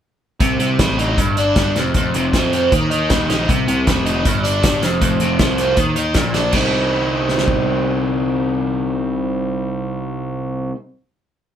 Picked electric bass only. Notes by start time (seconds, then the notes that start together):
0.40 C2
0.59 C2
0.79 A1
1.18 G1
1.56 G1
1.75 F1
1.95 F1
2.15 F1
2.33 F2
2.72 D#2
3.11 D#2
3.30 A#1
3.49 C2
3.68 C2
3.87 F1
4.26 G1
4.64 G1
4.84 F1
5.02 F1
5.21 F1
5.39 C2
5.78 D#2
6.15 A#1
6.34 A#1
6.53 C2